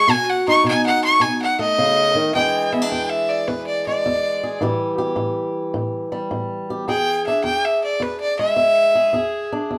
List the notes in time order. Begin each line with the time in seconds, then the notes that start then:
Already playing: C#6
0.08 B2 F#4 G#5
0.30 F#5
0.48 D#4 C#6
0.64 B2
0.68 G#5
0.86 F#5
1.04 C#6
1.20 B2 G#5
1.42 F#5
1.59 A3 D#5
1.78 C#3
2.15 D#3
2.35 E2 E3 G#3 D4 G#4 G5
2.72 B3 E5
2.82 D4
2.91 E2 G5
3.10 E5
3.29 D5
3.48 E2 B4
3.67 D5
3.87 G#3 D5
4.06 E2
4.43 G#4
4.61 A2 E3 G3 G4
4.98 G4
5.16 A2
5.74 A2
6.12 G3
6.31 A2
6.70 G4
6.88 E2 G#4 G5
7.27 D4 E5
7.44 E2 G5
7.65 E5
7.84 D5
8.00 E2 B4
8.20 D5
8.39 G#3 E5
8.56 E2
8.95 G#4
9.13 E2 G#4
9.52 D4
9.70 E2